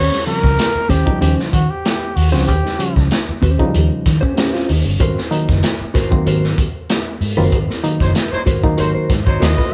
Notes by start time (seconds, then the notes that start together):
Already playing: C#4 G4 C5 C#5
0.11 G3 C4, snare
0.26 C#3 F3 G3 C4 A#4, closed hi-hat
0.44 C#2, kick, snare
0.59 snare, closed hi-hat
0.75 muted fingered electric bass stroke
0.89 D#2 C#4 G4 C5, kick, snare, closed hi-hat
1.06 C#3 F3 G3 D#4, kick
1.21 D#2 C#4 G4 C5, closed hi-hat
1.39 snare
1.53 D#3 F#4, kick, closed hi-hat
1.70 G4
1.85 snare, closed hi-hat
2.16 D#2 F#4, open hi-hat
2.32 C#2 C#3 F3 G3 C4 C#4 F#4 G4 C5, snare
2.47 D#2 G4, kick, closed hi-hat
2.65 G3 D#4, snare
2.79 C#3 F3 G3 C#4, closed hi-hat
2.96 C#2, kick, snare
3.11 snare, closed hi-hat
3.29 muted fingered electric bass stroke
3.42 D#2 C#4 G4 C5, kick, closed hi-hat
3.59 C#3 F3 F#3 D#4, kick
3.66 G3
3.74 D#2, closed hi-hat
4.06 D#3, kick, snare, closed hi-hat
4.21 C#4 G4 C5, kick
4.36 C#4 G4 C5, snare, closed hi-hat
4.53 C4 C#4 F4 G4 C5, snare
4.68 D#2 A#3 D#4, open hi-hat
4.85 G1 G3 C#4
5.00 G#1 F#4 A#4 C5, kick, closed hi-hat
5.16 A#3 C4, snare
5.31 D#3 F#3 A#3 D#4, closed hi-hat
5.49 F#1, kick, snare
5.63 snare, closed hi-hat
5.81 muted fingered electric bass stroke
5.94 G#1 F#4 A#4 C5, kick, snare, closed hi-hat
6.11 D#3 F#3 A#3 C4, kick
6.26 G#1 F#4 A#4 C5, closed hi-hat
6.44 snare
6.58 kick, closed hi-hat
6.90 snare, closed hi-hat
7.21 G#2, open hi-hat
7.37 F#1 D#3 F#3 A#3 C4 F#4 A#4 C5
7.52 G#1, kick, closed hi-hat
7.69 A#3 C4, snare
7.83 D#3 F#3 A#3 D#4, closed hi-hat
8.00 F#1 F#3 D#4 C5, kick, snare
8.15 snare, closed hi-hat
8.32 F#3 D#4 C5, muted fingered electric bass stroke
8.46 G#1 F#4 A#4 C5, kick, closed hi-hat
8.63 D#3 F#3 A#3 D#4, kick
8.77 G#1 F#3 D#4 F#4 A#4 C5, closed hi-hat
8.94 F#4 A#4 C5
9.10 G#2, kick, snare, closed hi-hat
9.26 G#1 F#3 D#4 C5, kick
9.40 D#2 F#4 A#4 C5 D#5, snare, closed hi-hat
9.57 F#4 A#4 C5, kick, snare